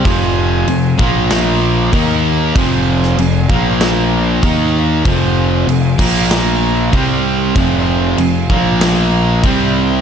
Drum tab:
CC |x---x---x---x---|x---x---x---x---|x---x-x-x---x---|x---x---x---x---|
SD |--------o-------|---o----o-------|--------o-------|--------o-------|
BD |o-----o-----o---|o-----o-----o---|o-----o-----o---|o-----o-----o---|